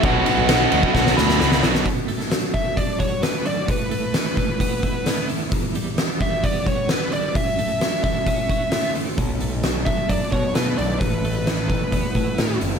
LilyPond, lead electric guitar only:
\new Staff \with { instrumentName = "Lead electric guitar" } { \time 4/4 \key b \minor \tempo 4 = 131 fis''2 fis''8 b''4 r8 | r4. e''8 d''8 cis''8 b'8 d''8 | b'4. b'2 r8 | r4. e''8 d''8 cis''8 b'8 d''8 |
e''4. e''2 r8 | r4. e''8 d''8 cis''8 b'8 d''8 | b'4. b'2 r8 | }